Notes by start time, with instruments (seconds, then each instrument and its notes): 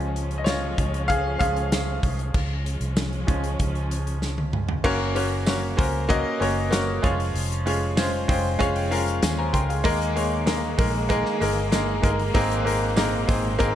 Already playing: fingered electric bass C#2, upright piano F3 G#3 C#4, string section F3 G#3 C#4
0.00 closed hi-hat
0.16 closed hi-hat
0.31 closed hi-hat
0.38 upright piano D#5
0.44 upright piano F4 C#5, snare, closed hi-hat, tambourine
0.78 fingered electric bass C#2, kick, closed hi-hat
0.94 closed hi-hat
1.08 upright piano G#4 F5, kick, closed hi-hat
1.39 fingered electric bass C#2, upright piano F3 G#3 C#4 G#4 F5, kick, closed hi-hat
1.56 closed hi-hat
1.72 snare, closed hi-hat, tambourine
2.03 fingered electric bass C2, kick, open hi-hat
2.19 closed hi-hat
2.34 fingered electric bass C#2, string section F3 G#3 C#4, kick, crash
2.66 closed hi-hat
2.80 fingered electric bass C2, closed hi-hat
2.97 snare, tambourine
3.13 closed hi-hat
3.27 fingered electric bass C#2, upright piano F3 G#3 C#4, kick, closed hi-hat
3.44 closed hi-hat
3.59 fingered electric bass C#2, kick, closed hi-hat
3.75 closed hi-hat
3.91 closed hi-hat
4.07 closed hi-hat
4.22 snare, tambourine
4.38 high tom
4.53 mid tom
4.69 floor tom
4.84 fingered electric bass F#1, upright piano C#3 A#3 C#4 F#4 A#4 C#5, kick, crash
5.15 upright piano A#3 C#4 F#4 A#4 C#5, hi-hat pedal, open hi-hat
5.46 upright piano A#3 C#4 F#4 A#4 C#5, snare, hi-hat pedal, open hi-hat, tambourine
5.77 fingered electric bass C#2, upright piano A#3 C#4 F#4 A#4 C5, kick, hi-hat pedal, open hi-hat
6.09 upright piano A#3 C#4 F#4 A#4 D#5, kick, hi-hat pedal, open hi-hat
6.40 fingered electric bass F#1, upright piano A#3 C#4 F#4 A#4 C#5, hi-hat pedal, open hi-hat
6.71 upright piano A#3 C#4 F#4 A#4 C#5, snare, hi-hat pedal, open hi-hat, tambourine
7.02 fingered electric bass F1, upright piano F3 G#3 C#4 F4 G#4 C#5, kick, hi-hat pedal, open hi-hat
7.20 open hi-hat
7.34 fingered electric bass F1, hi-hat pedal, open hi-hat
7.51 hi-hat pedal
7.66 upright piano G#3 C#4 F4 G#4 C#5, hi-hat pedal, open hi-hat
7.97 upright piano G#3 C#4 F4 G#4 C5, snare, hi-hat pedal, open hi-hat, tambourine
8.28 fingered electric bass F1, upright piano G#3 C#4 F4 G#4 C5 G5, kick, hi-hat pedal, open hi-hat
8.59 fingered electric bass F1, upright piano G#3 C#4 F4 G#4 C#5 F5, kick, hi-hat pedal, open hi-hat
8.76 upright piano G5, open hi-hat
8.91 upright piano G#3 C#4 F4 G#4 A#4 F5, hi-hat pedal, open hi-hat
9.07 hi-hat pedal
9.22 fingered electric bass D#2, upright piano G#5, snare, hi-hat pedal, open hi-hat, tambourine
9.38 upright piano C5 G#5 A#5
9.53 fingered electric bass C#2, upright piano A#4 G5 C6, kick, hi-hat pedal, open hi-hat
9.69 upright piano G#4 F5, open hi-hat
9.84 fingered electric bass D#2, upright piano A#2 G#3 A#3 D#4 G#4 A#4, string section D#3 G#3 A#3, kick, hi-hat pedal, open hi-hat
10.01 hi-hat pedal
10.16 upright piano G#3 A#3 D#4 G#4 C#5, hi-hat pedal, open hi-hat
10.46 upright piano G#3 A#3 D#4 G#4 A#4, snare, hi-hat pedal, open hi-hat, tambourine
10.78 fingered electric bass A#1, upright piano G#3 A#3 D#4 G#4 A#4, kick, hi-hat pedal, open hi-hat
11.09 upright piano G#3 A#3 D#4 G#4 A#4, kick, hi-hat pedal, open hi-hat
11.26 snare
11.40 fingered electric bass G1, upright piano G#3 A#3 D#4 G#4 A#4, hi-hat pedal, open hi-hat
11.72 upright piano G#3 A#3 D#4 G#4 A#4, snare, hi-hat pedal, open hi-hat, tambourine
12.02 fingered electric bass G1, upright piano G#3 A#3 D#4 G#4 A#4, kick, hi-hat pedal, open hi-hat
12.20 open hi-hat
12.34 fingered electric bass G#1, upright piano G#2 D#3 A#3 C4 D#4 G#4 A#4, string section A#2 G#3, kick, hi-hat pedal, open hi-hat
12.51 hi-hat pedal
12.65 upright piano A#3 C4 D#4 G#4 A#4, hi-hat pedal, open hi-hat
12.96 upright piano A#3 C4 D#4 G#4 A#4, snare, hi-hat pedal, open hi-hat, tambourine
13.27 fingered electric bass G#1, upright piano A#3 C4 D#4 G#4 C5, kick, hi-hat pedal, open hi-hat
13.59 fingered electric bass G#1, upright piano A#3 C4 D#4 G#4 A#4, kick, hi-hat pedal, open hi-hat